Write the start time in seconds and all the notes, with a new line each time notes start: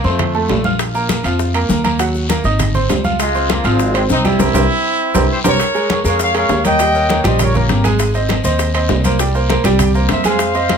0.04 F2 A3 C4 F4 C5 C6, high bongo, high conga, short guiro
0.19 high bongo, high conga, low conga, high timbale, long guiro
0.34 A3 A4 A5, high bongo, high conga
0.49 A#1, high bongo, low bongo, high conga, high timbale, low timbale, short guiro
0.64 F4 F5 F6, high conga, short guiro
0.79 high bongo, high conga, high timbale, long guiro, maracas
0.94 A#3 A#4 A#5, high bongo, high conga, maracas
1.09 high bongo, high conga, high timbale, short guiro, maracas
1.23 F2 F3 F4 F5, high bongo, high conga, high timbale, short guiro, maracas
1.39 high bongo, high conga, long guiro, maracas
1.54 A#3 A#4 A#5, high bongo, high conga, high timbale, maracas
1.69 D#2, high bongo, low bongo, high conga, short guiro, maracas
1.84 A#3 A#4 A#5, high conga, high timbale, short guiro, maracas
1.99 F#3 F#4 F#5, high bongo, high conga, high timbale, long guiro, maracas
2.14 high bongo, high conga, maracas
2.29 A#3 A#4 A#5, high bongo, high conga, high timbale, short guiro, maracas
2.44 G#1 D#4 D#5 D#6, high bongo, high conga, short guiro, maracas
2.59 high bongo, high conga, low conga, high timbale, long guiro, maracas
2.74 C4 C5 C6, high bongo, high conga, low conga, maracas
2.89 C#2, high bongo, low bongo, high conga, high timbale, low timbale, short guiro, maracas
3.04 F4 F5 F6, high conga, short guiro, maracas
3.20 G#3 F4, high bongo, high conga, high timbale, long guiro, maracas
3.35 C4 C5 C6, high bongo, high conga, maracas
3.50 A#3 F4, high bongo, high conga, high timbale, short guiro, maracas
3.64 G#1 F3 G#3 C4 F4 F5, high bongo, high conga, high timbale, short guiro, maracas
3.79 high bongo, high conga, maracas
3.94 G#3 C4 C5 C6, high bongo, high conga, high timbale, maracas
4.09 C2 C4 D#4, high bongo, low bongo, high conga, short guiro, maracas
4.24 G3 C4 E4 G4 G5, high conga, high timbale, short guiro, maracas
4.39 C2 G4 A#4 C5, low bongo, high conga, high timbale, long guiro, maracas
4.54 C2 G4 A#4 C5, low bongo, high conga, high timbale, long guiro, maracas
5.14 C2 G4 A#4 C5, low bongo, high conga, high timbale, long guiro, maracas
5.32 G4 C5
5.44 C2 G4 A#4 C5 C#5, low bongo, high conga, high timbale, long guiro, maracas
5.60 high bongo, high conga, high timbale, long guiro, maracas
5.74 G#3 G#4 A#4, high bongo, high conga, maracas
5.89 high bongo, high conga, high timbale, short guiro, maracas
6.04 F2 G#3 G#4 A#4 C#5 F5, high bongo, short guiro, maracas
6.19 C#5 F5, high bongo, high conga, high timbale, long guiro, maracas
6.34 G#3 G#4 A#4 C#5 F5, high bongo, high conga, high timbale, maracas
6.49 D#2, high bongo, low bongo, high conga, low timbale, short guiro, maracas
6.64 A#3 A#4 C#5 D#5 G5, high conga, high timbale, short guiro, maracas
6.79 G3 G4 G5, high bongo, high timbale, long guiro, maracas
6.94 A#3 A#4 C#5, high conga, maracas
7.09 A#3 A#4 C#5, high bongo, high conga, high timbale, short guiro, maracas
7.24 A#1 G3 G4 C5 D#5 G5, high bongo, high conga, high timbale, short guiro, maracas
7.39 A#4 C#5, high bongo, high conga, low conga, high timbale, long guiro, maracas
7.54 A#3 G4 A#4 C#5, high bongo, high conga, low conga, maracas
7.69 G#1, high bongo, low bongo, high conga, high timbale, short guiro, maracas
7.84 G#3 G#4 G#5, high bongo, high conga, high timbale, short guiro, maracas
7.99 high bongo, high conga, high timbale, long guiro, maracas
8.14 C4 C5 D#5, high bongo, high conga, maracas
8.29 high bongo, high conga, high timbale, short guiro, maracas
8.44 D#2 C4 C5 D#5, high bongo, high conga, short guiro, maracas
8.59 high bongo, high conga, high timbale, long guiro, maracas
8.74 C4 C5 D#5, high bongo, high conga, high timbale, maracas
8.89 C2, high bongo, low bongo, high conga, low timbale, short guiro, maracas
9.04 A#3 A#4 C5, high conga, high timbale, short guiro, maracas
9.19 G3 G4 G5, high bongo, high timbale, long guiro, maracas
9.35 A#3 A#4 C5, high conga, maracas
9.49 A#3 A#4 C5, high bongo, high conga, high timbale, short guiro, maracas
9.64 C2 G3 G4 G5, high bongo, high conga, high timbale, short guiro, maracas
9.79 high bongo, high conga, low conga, high timbale, long guiro, maracas
9.94 A#3 A#4 C5, high bongo, high conga, maracas
10.09 F2 C5 E5, high bongo, low bongo, high conga, high timbale, short guiro, maracas
10.24 G#3 G#4 C5 F5 G#5, high bongo, high conga, high timbale, short guiro, maracas
10.39 high bongo, high conga, high timbale, maracas
10.54 C4 C5 D#5, high bongo, high conga, maracas
10.69 high bongo, high conga, high timbale, short guiro, maracas